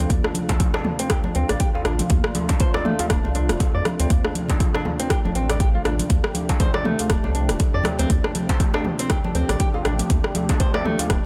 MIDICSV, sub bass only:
0, 0, Header, 1, 2, 480
1, 0, Start_track
1, 0, Key_signature, -1, "minor"
1, 0, Tempo, 500000
1, 99, Time_signature, 4, 2, 24, 8
1, 10806, End_track
2, 0, Start_track
2, 0, Title_t, "Sub bass"
2, 0, Program_c, 0, 38
2, 95, Note_on_c, 0, 38, 98
2, 181, Note_off_c, 0, 38, 0
2, 1301, Note_on_c, 0, 38, 86
2, 1383, Note_off_c, 0, 38, 0
2, 1438, Note_on_c, 0, 33, 100
2, 1500, Note_off_c, 0, 33, 0
2, 1780, Note_on_c, 0, 33, 96
2, 1939, Note_off_c, 0, 33, 0
2, 2020, Note_on_c, 0, 38, 99
2, 2103, Note_off_c, 0, 38, 0
2, 2980, Note_on_c, 0, 26, 77
2, 3063, Note_off_c, 0, 26, 0
2, 3115, Note_on_c, 0, 36, 92
2, 3356, Note_on_c, 0, 26, 100
2, 3371, Note_off_c, 0, 36, 0
2, 3419, Note_off_c, 0, 26, 0
2, 3597, Note_on_c, 0, 41, 81
2, 3659, Note_off_c, 0, 41, 0
2, 3836, Note_on_c, 0, 38, 88
2, 3899, Note_off_c, 0, 38, 0
2, 3940, Note_on_c, 0, 38, 96
2, 4023, Note_off_c, 0, 38, 0
2, 5034, Note_on_c, 0, 26, 87
2, 5098, Note_off_c, 0, 26, 0
2, 5134, Note_on_c, 0, 33, 82
2, 5552, Note_off_c, 0, 33, 0
2, 5613, Note_on_c, 0, 33, 101
2, 5776, Note_off_c, 0, 33, 0
2, 5858, Note_on_c, 0, 38, 98
2, 5942, Note_off_c, 0, 38, 0
2, 6817, Note_on_c, 0, 26, 80
2, 6902, Note_off_c, 0, 26, 0
2, 6952, Note_on_c, 0, 36, 91
2, 7189, Note_on_c, 0, 26, 107
2, 7204, Note_off_c, 0, 36, 0
2, 7255, Note_off_c, 0, 26, 0
2, 7433, Note_on_c, 0, 41, 84
2, 7497, Note_off_c, 0, 41, 0
2, 7669, Note_on_c, 0, 38, 87
2, 7735, Note_off_c, 0, 38, 0
2, 7777, Note_on_c, 0, 38, 93
2, 7862, Note_off_c, 0, 38, 0
2, 8974, Note_on_c, 0, 38, 85
2, 9060, Note_off_c, 0, 38, 0
2, 9111, Note_on_c, 0, 33, 94
2, 9176, Note_off_c, 0, 33, 0
2, 9455, Note_on_c, 0, 33, 97
2, 9617, Note_off_c, 0, 33, 0
2, 9697, Note_on_c, 0, 38, 98
2, 9782, Note_off_c, 0, 38, 0
2, 10656, Note_on_c, 0, 26, 80
2, 10741, Note_off_c, 0, 26, 0
2, 10806, End_track
0, 0, End_of_file